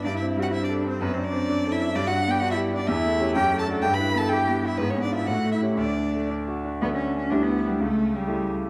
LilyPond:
<<
  \new Staff \with { instrumentName = "Violin" } { \time 2/4 \key g \major \tempo 4 = 125 d''16 e''8 fis''16 e''16 d''8 c''16 | b'16 c''16 d''4 e''8 | d''16 fis''8 g''16 fis''16 e''8 d''16 | \key d \major e''4 g''8 a''8 |
g''16 b''8 a''16 g''8. e''16 | b'16 cis''16 d''16 e''16 fis''8 e''8 | d''4 r4 | b16 cis'8 cis'16 d'16 b8 g16 |
a8. g8. r8 | }
  \new Staff \with { instrumentName = "Cello" } { \time 2/4 \key g \major d'16 e'8 fis'16 e'16 d'8 c'16 | b16 c'16 d'4 e'8 | d'16 fis'8 g'16 fis'16 e'8 d'16 | \key d \major e'4 g'8 a'8 |
g'16 b'8 a'16 g'8. e'16 | b16 cis'16 d'16 e'16 fis'8 e'8 | d'4 r4 | b16 cis'8 cis'16 d'16 b8 g16 |
a8. g8. r8 | }
  \new Staff \with { instrumentName = "Grand piano" } { \time 2/4 \key g \major \tuplet 3/2 { g,8 c'8 g8 c'8 a'8 c'8 } | \tuplet 3/2 { fis,8 d'8 c'8 d'8 a'8 d'8 } | \tuplet 3/2 { g,8 d'8 b8 d'8 g'8 d'8 } | \key d \major \tuplet 3/2 { e,8 a8 <cis' g'>8 fis,8 a8 <d' fis'>8 } |
\tuplet 3/2 { g,8 e'8 b8 e'8 b8 e'8 } | \tuplet 3/2 { gis,8 b8 <d' eis'>8 a,8 a8 <cis' g'>8 } | \tuplet 3/2 { d,8 d'8 a8 d'8 fis'8 d'8 } | <d, d a d' fis'>4 <d, d g e' g'>4 |
<cis, cis>4 <a e' g'>4 | }
>>